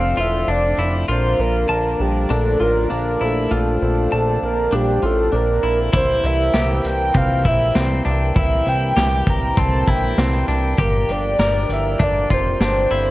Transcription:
Already playing: F1 D3 F3 A3 C4 F5
0.17 E1 F4 E5
0.48 F1 D4 D5
0.78 F1 E4
1.08 A#1 F3 A#3 D4 F4 C5
1.39 A#1 A#4
1.69 A#1 A5
2.00 A#1 G4
2.30 A#1 D4 A4
2.60 A1 F4 A#4
2.90 A#1 D4 A#4
3.21 A#1 E4 A4
3.51 A#1 C4 F4
3.82 A#1 A4
4.12 A#1 A5
4.42 A#1 A#4
4.72 A#1 D4 G4
5.03 A1 F4 A4
5.32 A#1 D4 A#4
5.63 A#1 E4
5.93 C2 E3 A#3 E4 G4 C5, kick, closed hi-hat
6.24 C2 E5, closed hi-hat
6.54 C2 G4, snare, closed hi-hat
6.85 C2 G5, closed hi-hat
7.14 C2 C4 F5, kick, closed hi-hat
7.45 A#1 E4 E5, kick, closed hi-hat
7.75 C2 C4, snare, closed hi-hat
8.05 C2 D4, closed hi-hat
8.36 C2 E4 E5, kick, closed hi-hat
8.67 C2 G5, closed hi-hat
8.97 C2 G4, snare, closed hi-hat
9.27 C2 A#5, kick, closed hi-hat
9.57 C2 C4 A5, kick, closed hi-hat
9.87 A#1 E4 G5, kick, closed hi-hat
10.18 C2 C4, snare, closed hi-hat
10.48 C2 D4, closed hi-hat
10.78 G1 F3 D4 G4 A#4, kick, closed hi-hat
11.09 G1 D5, closed hi-hat
11.39 G1 A#4, snare, closed hi-hat
11.69 G1 E5, closed hi-hat
11.95 E5
12.00 G1 D4, kick, closed hi-hat
12.04 D5
12.30 F1 F4 C5, kick, closed hi-hat
12.60 G1 D4 C5, snare, closed hi-hat
12.90 G1 E4, closed hi-hat

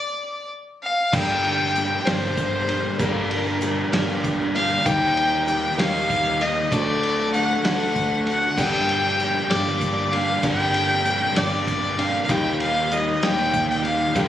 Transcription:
Already playing: D5
0.83 F5
1.12 G1 G2 D3 G3 A#3 D4 G4 A#4 D5 G5, kick, crash, shaker
1.44 ride
1.60 shaker
1.75 G3 A#3 D4 A#4, ride, shaker
2.06 G1 G2 D3 G3 A#3 D4 G4 A#4 C5 D5, snare, ride
2.22 shaker
2.37 kick, ride, shaker
2.68 G3 A#3 D4 A#4, ride
2.99 G1 G2 D3 G3 A#3 D4 G4 A#4 D5, kick, ride, shaker
3.31 ride
3.46 shaker
3.61 G3 A#3 D4 A#4, ride, shaker
3.92 G1 G2 D3 G3 A#3 D4 G4 A#4 D5, snare, ride
4.09 shaker
4.24 kick, ride, shaker
4.54 G3 A#3 D4 A#4 F5, ride
4.85 D#2 D#3 G3 A#3 D#4 G4 A#4 D#5 G5, kick, ride, shaker
5.17 ride
5.33 shaker
5.46 G3 A#3 D#4 A#4 G5, ride, shaker
5.77 D#2 D#3 G3 A#3 D#4 G4 A#4 D#5 F5, snare, ride
5.95 shaker
6.10 kick, ride, shaker
6.41 A#3 D#4 A#4 D#5, ride
6.71 D2 D3 F#3 A3 D4 F#4 A4 D5, kick, ride, shaker
7.03 ride
7.33 A3 D4 F#4 A4 F#5, ride, shaker
7.65 D2 D3 F#3 A3 D4 F#4 A4 D5 F#5, snare, ride
7.96 kick, ride, shaker
8.26 D4 F#4 A4 F#5, ride, shaker
8.57 G1 G2 D3 G3 A#3 D4 G4 A#4 D5 G5, kick, crash, shaker
8.89 ride
9.04 shaker
9.19 G3 A#3 D4 G4, ride, shaker
9.50 G1 G2 D3 G3 A#3 D4 G4 A#4 D5, snare, ride
9.66 shaker
9.81 kick, ride, shaker
10.12 G3 A#3 D4 G4 F5, ride
10.42 G1 G2 D3 G3 A#3 C4 D4 G4 A#4 D5 G5, kick, ride, shaker
10.74 ride
10.90 shaker
11.04 G3 A#3 D4 G4, ride, shaker
11.36 G1 G2 D3 G3 A#3 D4 G4 A#4 D5, snare, ride
11.52 shaker
11.67 kick, ride, shaker
11.97 G3 A#3 D4 G4 F5, ride
12.23 F5
12.29 D#2 D#3 G3 A#3 D#4 G4 A#4 D#5 G5, kick, ride, shaker
12.60 F5, ride
12.76 shaker
12.90 G3 A#3 D#4 G4 D#5, ride, shaker
13.23 D#2 D#3 G3 A#3 D#4 G4 A#4 D5 G5, snare, ride
13.39 shaker
13.54 kick, ride, shaker
13.70 G5
13.83 A#3 D#4 G4 F5, ride
14.14 G2 D3 F3 G3 A#3 D4 F4 G4 A#4 F5 G5, kick, ride, shaker

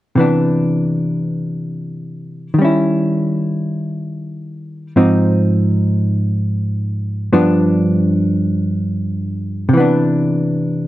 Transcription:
0.16 C3 E3 B3
0.20 D4
2.54 D#3
2.59 G3 C#4
2.65 E4
4.96 G#2 F3 C4 D#4
7.33 G2 F3 B3 D4
9.69 C3
9.73 E3 B3
9.80 D4

